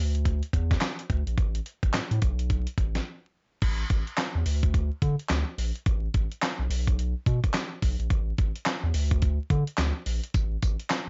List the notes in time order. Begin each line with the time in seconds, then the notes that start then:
Already playing: D2
0.15 closed hi-hat
0.25 kick, closed hi-hat
0.43 closed hi-hat
0.53 E2, kick, closed hi-hat
0.71 kick, snare, closed hi-hat
0.81 snare, clap, closed hi-hat
0.99 closed hi-hat
1.10 D2, kick, closed hi-hat
1.27 A#1, closed hi-hat
1.38 A1, kick, closed hi-hat
1.55 closed hi-hat
1.66 closed hi-hat
1.83 A1, kick, closed hi-hat
1.94 A2, snare, clap, closed hi-hat
2.11 A2, closed hi-hat
2.22 B1, kick, closed hi-hat
2.39 closed hi-hat
2.50 kick, closed hi-hat
2.67 closed hi-hat
2.78 A1, kick, closed hi-hat
2.95 snare, closed hi-hat
3.62 A1, kick, closed hi-hat, crash
3.90 A1, kick, closed hi-hat
4.07 closed hi-hat
4.18 snare, clap, closed hi-hat
4.35 E2
4.46 D2, open hi-hat
4.63 kick, closed hi-hat
4.74 kick, closed hi-hat
5.02 D3, kick, closed hi-hat
5.19 closed hi-hat
5.29 D2, snare, clap, closed hi-hat
5.58 A#1, open hi-hat
5.75 closed hi-hat
5.86 A1, kick, closed hi-hat
6.14 A1, kick, closed hi-hat
6.32 closed hi-hat
6.43 snare, clap, closed hi-hat
6.59 B1
6.70 B1, open hi-hat
6.87 kick, closed hi-hat
6.99 closed hi-hat
7.26 B2, kick, closed hi-hat
7.44 kick, closed hi-hat
7.54 snare, clap, closed hi-hat
7.82 B1, kick, open hi-hat
7.99 A#1, closed hi-hat
8.10 A1, kick, closed hi-hat
8.38 A1, kick, closed hi-hat
8.56 closed hi-hat
8.66 snare, clap, closed hi-hat
8.84 E2
8.94 D2, open hi-hat
9.11 kick, closed hi-hat
9.22 kick, closed hi-hat
9.50 D3, kick, closed hi-hat
9.67 closed hi-hat
9.78 D2, snare, clap, closed hi-hat
10.06 A#1, open hi-hat
10.24 closed hi-hat
10.34 A1, kick, closed hi-hat, tambourine
10.62 A1, kick, closed hi-hat, tambourine
10.79 closed hi-hat
10.90 snare, clap, closed hi-hat, tambourine